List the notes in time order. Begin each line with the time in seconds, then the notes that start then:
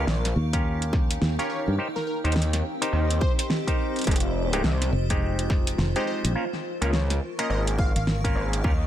Already playing: D#4 A#4 F5 C#6
0.07 A#1, snare
0.25 snare, closed hi-hat
0.36 D#2
0.53 C#4 F4 G4 A#4 G5, kick, closed hi-hat
0.82 closed hi-hat
0.93 kick, snare
1.11 closed hi-hat
1.22 D#2, snare
1.39 C#4 F4 G4 A#4 C#5, closed hi-hat
1.50 C#5
1.68 G2
1.78 C4 D#4 G4 A#4 C5
1.96 G4 A#4, snare
2.07 A#4
2.14 C5
2.24 D#2 D#4 G4 A#4 C5, closed hi-hat
2.32 snare, closed hi-hat
2.42 D#5, closed hi-hat
2.53 snare, closed hi-hat
2.81 D#4 G4 A#4 C5, closed hi-hat
2.93 D#2
3.10 closed hi-hat
3.21 C5, kick
3.38 C5, closed hi-hat
3.50 snare
3.67 D#4 G4 A#4 C5, kick, closed hi-hat
3.96 closed hi-hat
3.99 closed hi-hat
4.01 closed hi-hat
4.04 F4, closed hi-hat
4.07 F1 G#3 C4 D#4 G4, kick, closed hi-hat
4.11 closed hi-hat
4.16 closed hi-hat
4.20 closed hi-hat
4.53 G#3 C4 D#4 G4, closed hi-hat
4.64 C2, snare
4.82 snare, closed hi-hat
4.93 F1
5.10 G#3 C4 D#4 G4, kick, closed hi-hat
5.39 closed hi-hat
5.50 kick, snare
5.67 closed hi-hat
5.78 F1, snare
5.96 G#3 C4 D#4 G4 C5, closed hi-hat
6.07 C5
6.24 A#1, closed hi-hat
6.35 A#3 C#4 F4 A#4
6.53 snare
6.59 C#6
6.81 C#2 A#3 C#4 F4 A#4, closed hi-hat
6.89 F5, snare
7.10 snare, closed hi-hat
7.39 A#3 C#4 F4 A#4 D#5, closed hi-hat
7.50 G#1 D#5
7.67 closed hi-hat
7.79 F5, kick
7.96 G#1 F5, closed hi-hat
8.07 snare
8.24 A#3 C#4 F4 A#4, kick, closed hi-hat
8.36 G#1
8.53 closed hi-hat
8.64 D#2 C#4 D#4 F4 G4 A#4, kick